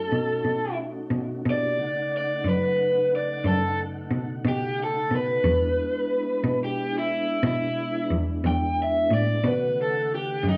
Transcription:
Already playing: A3 C#4 D#4 F#4 A4
0.12 B2
0.44 B2
1.11 B2
1.45 B2 A#3 D4 E4 G4
1.50 D5
1.79 C#3 A3 D#4 F#5
2.17 D5
2.44 F#2
2.49 B4
3.15 D5
3.44 F#2 A4
4.11 B2
4.45 B2 G4
4.84 A4
5.11 B2
5.16 B4
5.44 E2 G#3 B3 D4 E4
6.44 B2
6.64 G4
6.98 E4
7.43 B2 E4
8.10 E2
8.44 E2 G5
8.82 E5
9.11 A2 D5
9.43 B2 C#3 D#3 A3 B4 F#5
9.82 A4
10.15 G4
10.43 F#2
10.48 D#4

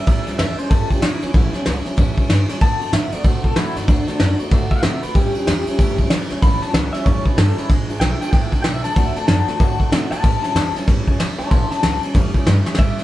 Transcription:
Already playing: E5
0.06 A1 A2 E3 G3 C#4 E4, kick, ride
0.25 C#2 G3 C#4 E4, snare, ride
0.37 E2 E3 G3 C#4 E4 E5, snare, ride
0.58 G3 C#4 E4 C5, muted upright bass stroke, ride
0.70 G2 A2 E3 G3 C#4 E4 A4, kick, ride
0.89 F#2 G3 C#4 E4 G4, kick, ride
1.02 E2 E3 G3 C#4 E4, snare, ride
1.21 D2 G3 C#4 E4, snare, ride
1.34 A1 A2 E3 G3 C#4 E4, kick, ride
1.54 G3 C#4 E4, muted upright bass stroke, snare, ride
1.66 C#2 E3 G3 C#4 E4, snare, ride
1.85 G3 C#4 E4, muted upright bass stroke, snare, ride
1.96 E2 A2 E3 G3 C#4 E4, kick, snare, ride
2.16 G3 C#4 E4, kick, ride
2.28 G2 E3 G3 C#4 E4, snare, ride
2.48 G3 C#4 E4, muted upright bass stroke, snare, ride
2.61 D2 D3 A3 C4 F#4 A5, kick, ride
2.79 F#2 A3 C4 F#4, ride
2.92 A2 D3 A3 C4 F#4 E5, snare, ride
3.12 A3 C4 F#4 D5, muted upright bass stroke, snare, ride
3.24 C3 D3 A3 C4 F#4 C5, kick, ride
3.44 B2 A3 C4 F#4 A4, kick, ride
3.56 A2 D3 A3 C4 E4 F#4, snare, ride
3.75 G2 A3 C4 D#4 F#4, snare, ride
3.87 D2 D3 A3 C4 D4 F#4, kick, ride
4.07 A3 C4 D4 F#4, muted upright bass stroke, snare, ride
4.19 F#2 D3 A3 C4 F#4, snare, ride
4.39 A3 C4 F#4, muted upright bass stroke, ride
4.51 A2 D3 A3 C4 F#4, kick, snare, ride
4.71 A3 C4 F#4 F#5, muted upright bass stroke, kick, ride
4.83 C3 D3 A3 C4 F#4 E5, snare, ride
5.02 A3 C4 F#4 B4, muted upright bass stroke, ride
5.15 A1 A2 E3 G3 C#4 E4 G4, kick, ride
5.34 C#2 C#4 E4, ride
5.39 G3
5.47 E2 E3 G3 C#4 E4, snare, ride
5.67 G3 C#4 E4, muted upright bass stroke, ride
5.79 G2 A2 E3 G3 C#4 E4, kick, ride
5.98 F#2 G3 C#4 E4, kick, ride
6.10 E2 E3 G3 C#4 E4, snare, ride
6.30 D2 C#4 E4, snare, ride
6.34 G3
6.42 A1 A2 E3 G3 C#4 E4 B5, kick, ride
6.61 C#4 E4 A5, muted upright bass stroke, snare, ride
6.66 G3
6.73 C#2 E3 G3 C#4 E4 F#5, snare, ride
6.93 C#4 E4 E5, snare, ride
6.97 G3
7.04 E2 A2 E3 G3 C#4 E4 C#5, kick, snare, ride
7.25 G3 C#4 E4 B4, kick, ride
7.37 G2 E3 G3 C#4 E4 A4, snare, ride
7.57 G3 C#4 E4, muted upright bass stroke, snare, ride
7.69 E1 E2 B2 E3 G#3 D4 E4, kick, ride
7.88 G#1 G#3 D4 E4, ride
7.92 E3
8.00 B1 E3 G#3 D4 G5, snare, ride
8.10 E5
8.21 E3 G#3 D4 E4 G5, snare, ride
8.31 D2 E2 B2 E3 G#3 D4 E4 G5, kick, snare, ride
8.42 E5
8.52 C#2 E3 G#3 D4 E4 G5, kick, ride
8.62 B1 E3 G#3 D4 G5, snare, ride
8.67 E4
8.74 E5
8.83 E2 E3 G#3 D4 E4 A5, snare, ride
8.94 D2 D3 A3 C4 F#4 A5, kick, ride
9.05 E5
9.14 A3 C4 F#4 A5, snare, ride
9.27 F#2 D3 A3 C4 F#4 A5, snare, ride
9.46 A3 C4 F#4, muted upright bass stroke, snare, ride
9.60 A2 D3 A3 C4 F#4, kick, snare, ride
9.79 A3 C4 F#4, muted upright bass stroke, kick, ride
9.90 C3 D3 A3 C4 F#4, snare, ride
10.10 A3 C4 F#4 F#5 A5, muted upright bass stroke, snare, ride
10.22 A1 A2 E3 G3 C#4 E4 A5 C6, kick, ride
10.42 C#2 G3 C#4 E4 A5, snare, ride
10.55 E2 E3 G3 C#4 E4, snare, ride
10.75 G3 C#4 E4, muted upright bass stroke, snare, ride
10.87 G2 A2 E3 G3 C#4 E4, kick, ride
11.07 F#2 G3 C#4 E4, kick, ride
11.18 E2 E3 G3 C#4 E4, snare, ride
11.38 D2 G3 C#4 E4 C#5 A5, ride
11.50 A1 A2 E3 G3 C#4 E4 A5 C6, kick, ride
11.70 G3 C#4 E4 A5, muted upright bass stroke, snare, ride
11.83 C#2 E3 G3 C#4 E4, snare, ride
12.02 G3 C#4 E4, muted upright bass stroke, ride
12.14 E2 A2 E3 G3 C#4 E4, kick, snare, ride
12.34 G3 C#4 E4, kick, ride
12.47 G2 E3 G3 C#4 E4, snare, ride
12.66 G3 C#4 E4, muted upright bass stroke, snare
12.75 A2 E3, snare
12.79 A1 G3 C#4 E4 E5, kick, ride
12.97 G3 C#4 E4, snare, ride

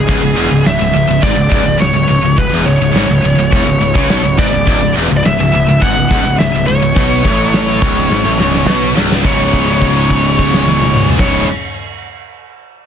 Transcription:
Already playing: C#3 G#3 G#4
0.07 C#1 C#2 B3, kick, crash
0.21 C#1 C#2
0.36 E1 E2, open hi-hat
0.51 C#1 C#2
0.65 C#1 C#2 E5, snare, open hi-hat
0.79 C#1 C#2
0.93 C#1 C#2, open hi-hat
1.08 C#1 C#2
1.22 G#1 G#2 D5, kick, open hi-hat
1.36 C#1 C#2
1.50 C#1 C#2, kick, open hi-hat
1.65 C#1 C#2
1.79 C#1 C#2 C#5, snare, open hi-hat
1.93 C#1 C#2
2.07 C#1 C#2, open hi-hat
2.21 C#1 C#2
2.36 C#1 C#2 B4, kick, open hi-hat
2.49 E1 E2
2.54 E2
2.64 C#1 C#2 C#5, open hi-hat
2.78 C#1 C#2
2.92 G#1 G#2, open hi-hat
2.96 G#2, snare
3.07 C#1 C#2
3.22 C#1 C#2, open hi-hat
3.35 C#1 C#2
3.39 C#2
3.51 E1 E2, kick, open hi-hat
3.66 C#1 C#2
3.80 C#1 C#2, open hi-hat
3.95 C#2 C#3, kick
4.09 B1 B2, snare, open hi-hat
4.24 C#1 C#2
4.38 G#1 G#2 D5, kick
4.52 C#1 C#2
4.66 C#1 C#2, kick, open hi-hat
4.80 C#1 C#2
4.94 E1 E2, open hi-hat
5.09 C#1 C#2
5.17 D5
5.23 C#1 C#2 E5, snare, open hi-hat
5.38 C#1 C#2
5.52 C#1 C#2, open hi-hat
5.67 C#1 C#2
5.80 G#1 G#2 F#5, kick, open hi-hat
5.95 C#1 C#2
6.08 C#1 C#2, kick, open hi-hat
6.23 C#1 C#2
6.27 C#2
6.36 C#1 C#2 E5, open hi-hat
6.40 C#2, snare
6.51 C#1 C#2
6.55 C#2
6.65 C#1 C#2 C#5, open hi-hat
6.79 C#1 C#2
6.94 B1 B2, kick, open hi-hat
7.24 A1 A2, kick
7.53 snare, open hi-hat
7.81 C#1 C#2, kick, open hi-hat
8.10 G#1 G#2, snare
8.24 A1 A2
8.38 C#1 C#2, snare
8.55 snare
8.67 B1 B2, snare
8.95 C#1 C#2, snare
9.12 snare
9.23 C#1 C#2 G#2 C#3 G#3 C#4 E4 C#5, kick, crash
9.53 kick, crash
9.68 crash
9.81 kick, crash
9.96 crash
10.10 kick, crash
10.25 crash
10.39 kick, crash
10.54 snare
10.67 high tom
10.81 mid tom
10.96 mid tom
11.10 floor tom
11.17 C#1 C#2 G#2 C#3 G#3 C#4 E4 C#5, kick, snare, crash

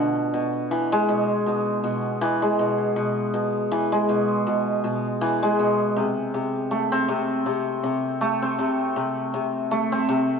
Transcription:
Already playing: B2 A3
0.34 B2
0.71 E3
0.92 G#3
1.09 B2
1.46 B2
1.84 B2
2.21 E3
2.42 G#3
2.59 B2
2.96 B2
3.34 B2
3.72 E3
3.92 G#3
4.09 B2
4.47 B2
4.84 B2
5.21 E3
5.43 G#3
5.59 B2
5.96 C3
6.34 C3
6.71 A3
6.92 C4
7.08 C3
7.46 C3
7.83 C3
8.21 A3
8.42 C4
8.59 C3
8.96 C3
9.34 C3
9.71 A3
9.92 C4
10.09 C3

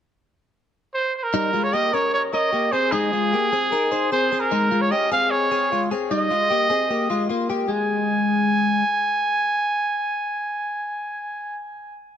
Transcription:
0.94 C5
1.16 C5
1.23 A#4
1.34 G3 D#4
1.53 G#3 F4
1.63 C#5
1.73 A#3 G4 D#5
1.93 C#4 A#4 C#5
2.13 C#5
2.33 C#4 A#4 D#5
2.53 A#3 G4
2.72 C4 G#4 C5
2.92 G#3 D#4 G#4
3.13 G#3 F4
3.33 A#3 G4
3.53 C4 G#4
3.72 D#4 A#4
3.92 D#4 C5
4.12 C4 G#4 C5
4.32 C4 G#4
4.40 A#4
4.51 G#3 D#4
4.71 G#3 F4
4.81 C#5
4.91 C#4 G4 D#5
5.12 C4 G#4 F5
5.31 C#5
5.51 C4 G#4
5.72 G#3 F4
5.91 C4 G#4
6.11 G3 D#4 D#5
6.31 G#3 F4
6.50 A#3 G4
6.70 C4 G#4
6.90 A#3 G4
7.10 G#3 F4
7.29 A#3 F4
7.50 A#3 G4
7.68 G#3 G#5

